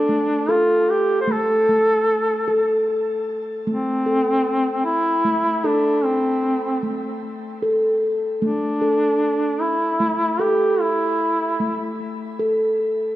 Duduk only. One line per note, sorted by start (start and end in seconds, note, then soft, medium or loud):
0.00 0.52 D4 medium
0.50 0.91 F4 medium
0.90 1.20 G4 medium
1.21 1.33 C5 medium
1.31 2.88 A4 loud
3.69 4.83 C4 medium
4.85 5.67 E4 medium
5.65 6.06 D4 medium
6.04 6.93 C4 medium
8.41 9.62 D4 medium
9.61 10.42 E4 medium
10.41 10.82 G4 medium
10.81 11.99 E4 medium